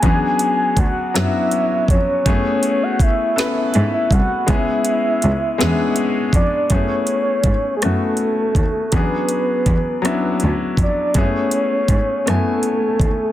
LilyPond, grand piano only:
\new Staff \with { instrumentName = "Grand piano" } { \time 6/8 \key fis \minor \tempo 4. = 54 <fis b cis' d' gis'>4 r8 <fis b cis' d' e' fis'>4 r8 | <a b cis' e' gis'>4 r8 <b cis' e' a' b'>4 r8 | <gis b cis' e' gis'>4 r8 <gis b cis' d' e' gis'>4 r8 | <a b cis' e' gis'>4 r8 <a b cis' e' fis'>4 r8 |
<fis b cis' d' gis'>4 r8 <fis b cis' d' e'>4 r8 | <gis a b cis' e' gis'>4 r8 <a b cis' e' gis''>4 r8 | }